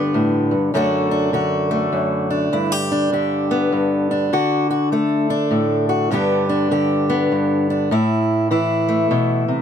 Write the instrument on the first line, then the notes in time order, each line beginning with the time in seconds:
steel-string acoustic guitar
Already playing: G2 D3 B3 D4 G4
0.14 A2
0.51 G2
0.74 F#2 D3 A3 D4 F#4
1.11 D4
1.33 D3 F#4
1.71 A3
1.93 F#2
2.30 D4
2.53 G2 E4
2.72 G4
2.92 D4
3.12 D3 G4
3.51 B3
3.72 G2
4.11 D4
4.33 D3 F#4
4.71 F#4
4.92 A3 A4
5.30 D4
5.51 A2
5.89 F#4
6.11 G2 D3 B3 D4 G4
6.49 D4
6.71 D3 G4
7.10 B3
7.32 G2
7.70 D4
7.91 A2 E4
8.51 E3 E4
8.89 A3
9.11 B2
9.48 C3